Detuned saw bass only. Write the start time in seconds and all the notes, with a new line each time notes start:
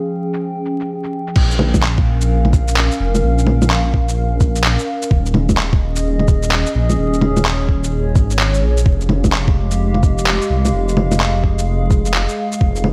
1.36 A#1
3.00 F1
3.23 A#1
5.11 D#1
6.75 A#1
6.98 D#1
8.16 G#1
8.62 A#1
8.86 F1
10.50 C2
10.73 F1
12.61 F1